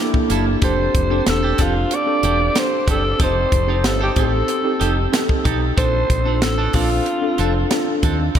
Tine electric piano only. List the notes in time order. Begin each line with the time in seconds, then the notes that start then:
Already playing: A#3 D4 E4 G4 A4
0.04 A4
0.62 C4 D4 G4 A4
1.10 C4 D4 G4 A4
1.58 C4 D4 G4 A4
2.06 C4 D4 G4 A4
2.54 C4 D4 G4 A4
3.19 C4 D#4 G4 A4
3.67 C4 D#4 G4 C5
4.15 C4 D#4 G4 C5
4.64 C4 D#4 G4 A4
5.12 C4 D#4 G4 A4
5.77 C4 D4 F4 A4
6.25 C4 D4 F4 A4
6.73 C4 D4 F4 A4
7.21 C4 D4 F4 A4
7.70 C4 D4 F4 A4
8.35 A#3 C4 F#4 A4